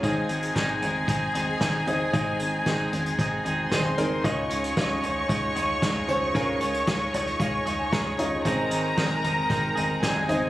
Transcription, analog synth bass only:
X:1
M:4/4
L:1/8
Q:1/4=114
K:Ab
V:1 name="Analog synth bass" clef=bass
A,,, A,,, A,,, A,,, A,,, A,,, A,,, A,,, | A,,, A,,, A,,, A,,, A,,, A,,, A,,, A,,, | D,, D,, D,, D,, D,, D,, D,, D,, | D,, D,, D,, D,, D,, D,, D,, D,, |
A,,, A,,, A,,, A,,, A,,, A,,, A,,, A,,, |]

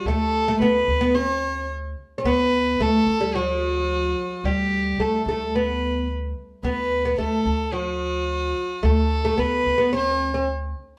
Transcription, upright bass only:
X:1
M:4/4
L:1/8
Q:1/4=109
K:none
V:1 name="Upright bass" clef=bass
D,,2 D,, D,,4 z | D,,2 D,, D,,4 z | D,,2 D,, D,,4 z | D,,2 D,, D,,4 z |
D,,2 D,, D,,4 z |]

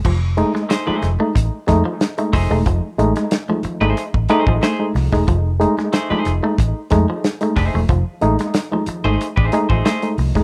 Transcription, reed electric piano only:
X:1
M:4/4
L:1/16
Q:1/4=92
K:Cdor
V:1 name="Reed electric piano"
F, z [^G,A,E] z2 [G,A,E] F, [G,A,E] z2 [G,A,E] z2 [G,A,E] F, [G,A,E] | F, z [^G,A,E] [A,E] z [G,A,E] F, [G,A,E] z2 [G,A,E] z2 [G,A,E] F, [G,A,E] | F, z [^G,A,E] [A,E] z [G,A,E] F, [G,A,E] z2 [G,A,E] z2 [G,A,E] z F, | F, z [^G,A,E] [A,E] z [G,A,E] F, [G,A,E] z2 [G,A,E] z2 [G,A,E] F, [G,A,E] |]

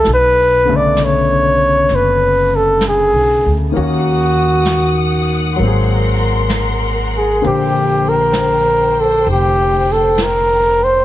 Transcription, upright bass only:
X:1
M:4/4
L:1/8
Q:"Swing" 1/4=65
K:Bdor
V:1 name="Upright bass" clef=bass
B,,,4 F,,,2- (3F,,, B,,, D,, | ^D,,4 G,,,4 | _B,,,4 =F,,,4 |]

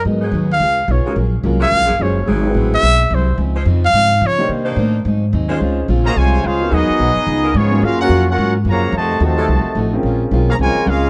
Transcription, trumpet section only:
X:1
M:4/4
L:1/8
Q:"Swing" 1/4=216
K:Abmix
V:1 name="Trumpet section"
z8 | z8 | z8 | z8 |
z8 | [K:Db] z3 [Gceb] [Fcda]2 [DAcf]2 | [_CGAe]6 [CFAd]2 | [DGBf] [DFBg]2 [DFBg]2 z [Gdfb]2 |
[Gce=a]2 [Gcea]4- [Gcea] z | z3 [Adfb] [FBda]2 [DABf]2 |]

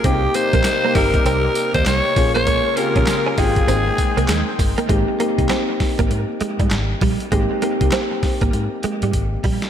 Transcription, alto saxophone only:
X:1
M:4/4
L:1/16
Q:"Swing 16ths" 1/4=99
K:Ab
V:1 name="Alto saxophone"
G2 c4 B2 B3 c d3 d- | d2 B4 A8 z2 | z16 | z16 |]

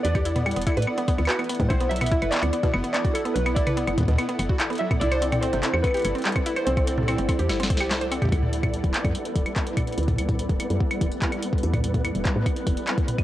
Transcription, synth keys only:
X:1
M:4/4
L:1/8
Q:1/4=145
K:Dmix
V:1 name="Synth keys"
d6 B2 | c e2 d2 z d A | B d2 z4 e | d2 c2 B4 |
c6- c z | z8 | z8 | z8 |]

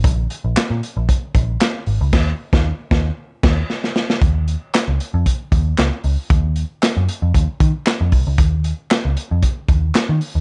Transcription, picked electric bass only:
X:1
M:4/4
L:1/16
Q:1/4=115
K:Ebdor
V:1 name="Picked electric bass" clef=bass
B,,,2 z B,,, z B,, z B,,, z2 B,,,2 z2 A,,, D,, | E,,2 z E,,2 z E,,2 z2 E,,2 z4 | E,,3 z2 D,, z F,, z2 E,,2 D,, z D,, z | E,,3 z2 G,, z F,, E,, z E, z2 F,, C,, D,, |
E,,3 z2 D,, z F,, z2 E,,2 z E, z E,, |]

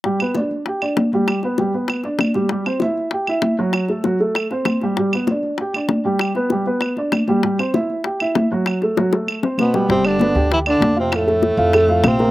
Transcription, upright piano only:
X:1
M:4/4
L:1/8
Q:1/4=195
K:G
V:1 name="Upright piano"
[G,G] [B,B] [Dd]2 [Gg] [Dd]2 [G,G]- | [G,G] [B,B] [G,G] [B,B]2 [Dd]2 [G,G] | [G,G] [Cc] [Ee]2 [Gg] [Ee]2 [F,F]- | [F,F] [A,A] [F,F] [A,A]2 [Cc]2 [G,G] |
[G,G] [B,B] [Dd]2 [Gg] [Dd]2 [G,G]- | [G,G] [B,B] [G,G] [B,B]2 [Dd]2 [G,G] | [G,G] [Cc] [Ee]2 [Gg] [Ee]2 [F,F]- | [F,F] [A,A] [F,F] [A,A]2 [Cc]2 [G,G] |
[G,G]2 [B,B] [Gg]2 [Dd]2 [=F=f]- | [=F=f] [A,A]2 [Ff] [A,A] [Ff]2 [_B,_B] |]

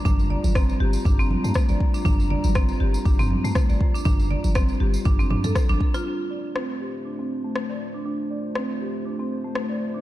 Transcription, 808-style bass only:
X:1
M:4/4
L:1/16
Q:"Swing 16ths" 1/4=120
K:Dm
V:1 name="808-style bass" clef=bass
G,,,2 z G,,,2 z G,,, z G,,,2 z G,, z G,,, z2 | G,,,2 z G,,,2 z G,,, z G,,,2 z G,, z G,,, z2 | G,,,2 z G,,,2 z G,,, z G,,,2 z G,, z G,,, z2 | z16 |
z16 |]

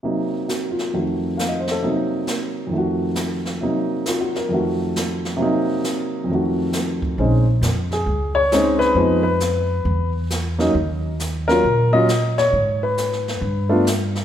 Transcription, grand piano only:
X:1
M:4/4
L:1/16
Q:"Swing" 1/4=135
K:Bbm
V:1 name="Grand piano"
z4 G2 F3 z3 f e c =A | z16 | z4 (3F2 G2 B2- B z6 z | z16 |
z6 A4 d4 _c2- | _c2 c8 z6 | z6 B4 e4 d2- | d2 _c8 z6 |]
V:2 name="Grand piano"
[C,G,B,E]8 [F,,E,=A,G]8 | [C,G,B,E]8 [F,,E,=A,G]8 | [C,G,B,E]8 [F,,E,=A,G]8 | [C,G,B,E]8 [F,,E,=A,G]8 |
[A,CDE]2 z8 z2 [A,CDE]4 | [F,A,_CE]2 z12 [G,B,DE]2 | z6 [G,B,DF]2 z2 [G,B,DF]2 z4 | z8 z2 [=A,=B,=DF]2 z4 |]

